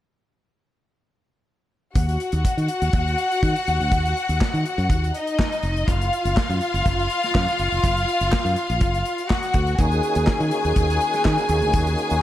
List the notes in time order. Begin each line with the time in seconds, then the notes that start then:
1.95 D#2 F#4 F#5, kick, closed hi-hat
2.09 closed hi-hat
2.20 closed hi-hat
2.32 D#2, closed hi-hat
2.45 muted fingered electric bass stroke, kick, closed hi-hat
2.57 D#3, closed hi-hat
2.68 closed hi-hat
2.82 D#2, closed hi-hat
2.93 D#2, kick, closed hi-hat
3.08 closed hi-hat
3.18 closed hi-hat
3.32 closed hi-hat
3.43 D#3, kick, closed hi-hat
3.56 closed hi-hat
3.67 D#2, closed hi-hat
3.80 D2, closed hi-hat
3.92 D#2, kick, closed hi-hat
4.06 closed hi-hat
4.17 closed hi-hat
4.29 D#2, closed hi-hat
4.41 kick, snare, clap
4.54 D#3, closed hi-hat
4.66 closed hi-hat
4.78 F#2, closed hi-hat
4.90 D#2, kick, closed hi-hat
5.04 closed hi-hat
5.14 D#4 D#5, closed hi-hat
5.27 closed hi-hat
5.39 kick, snare, clap
5.52 closed hi-hat
5.63 F1, closed hi-hat
5.77 closed hi-hat
5.87 F#1 F4 F5, kick, closed hi-hat
6.01 closed hi-hat
6.13 closed hi-hat
6.25 F#1, closed hi-hat
6.37 kick, snare, clap
6.50 F#2, closed hi-hat
6.61 closed hi-hat
6.74 F#1, closed hi-hat
6.86 F#1, kick, closed hi-hat
7.00 closed hi-hat
7.10 closed hi-hat
7.23 snare, closed hi-hat
7.35 F#2, kick, snare, clap
7.48 closed hi-hat
7.59 F#1, closed hi-hat
7.72 F1, closed hi-hat
7.84 F#1, kick, closed hi-hat
7.97 closed hi-hat
8.08 closed hi-hat
8.21 F#1, closed hi-hat
8.32 kick, snare, clap
8.45 F#2, closed hi-hat
8.56 closed hi-hat
8.70 A#1, closed hi-hat
8.81 F#1, kick, closed hi-hat
8.95 closed hi-hat
9.05 closed hi-hat
9.18 closed hi-hat
9.30 F#4 F#5, kick, snare, clap
9.43 closed hi-hat
9.54 D2, kick, closed hi-hat
9.67 closed hi-hat
9.78 D#2 D#3 A#3 C#4 D#4 F#4 G#4 G#5, kick, closed hi-hat
9.92 closed hi-hat
10.03 closed hi-hat
10.15 D#2, closed hi-hat
10.27 kick, snare, clap
10.40 D#3, closed hi-hat
10.51 closed hi-hat
10.65 D#2, closed hi-hat
10.76 D#2, kick, closed hi-hat
10.90 closed hi-hat
11.00 closed hi-hat
11.13 snare, closed hi-hat
11.25 D#3, kick, snare, clap
11.38 closed hi-hat
11.49 D#2, closed hi-hat
11.62 D2, closed hi-hat
11.73 D#2, kick, closed hi-hat
11.87 closed hi-hat
11.98 closed hi-hat
12.10 D#2, closed hi-hat